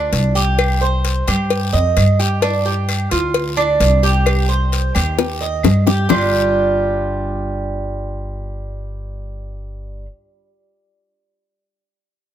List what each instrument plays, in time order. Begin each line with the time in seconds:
Already playing: cuban tres D4
0.12 upright bass C2, cowbell, short guiro
0.35 cuban tres G4, short guiro
0.59 cowbell, long guiro, claves
0.81 cuban tres C5
1.05 cowbell, short guiro
1.27 upright bass G2, cuban tres G4, cowbell, short guiro, claves
1.50 cowbell, long guiro
1.73 upright bass F2, cuban tres D#5
1.97 upright bass G2, cowbell, short guiro, claves
2.19 cuban tres G4, short guiro
2.42 cuban tres D4, cowbell, long guiro
2.65 cuban tres G4
2.89 cowbell, short guiro, claves
3.11 upright bass D2, cuban tres F4, cowbell, short guiro
3.34 cowbell, long guiro
3.57 cuban tres D4, claves
3.80 upright bass C2, cowbell, short guiro
4.03 cuban tres G4, short guiro
4.26 cowbell, long guiro, claves
4.49 cuban tres C5
4.72 cowbell, short guiro
4.95 upright bass D#2, cuban tres G4, cowbell, short guiro, claves
5.18 cowbell, high bongo, long guiro
5.41 cuban tres D#5
5.63 upright bass G2, cowbell, low bongo, short guiro, claves
5.87 cuban tres G4, low bongo, short guiro
6.09 upright bass G1, cuban tres G3 D4 F4, low bongo, long guiro, claves